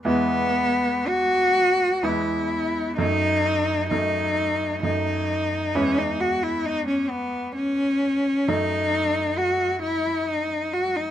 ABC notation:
X:1
M:3/4
L:1/16
Q:1/4=65
K:E
V:1 name="Cello"
B,4 F4 E4 | D4 D4 D4 | C D F E D C B,2 C4 | D4 F2 E2 D2 F D |]
V:2 name="Grand piano"
[E,,G,B,E]8 [E,,G,B,E]4 | [F,,A,D]4 [F,,A,D]4 [F,,A,D]4 | [E,,G,B,E]12 | [F,,A,D]12 |]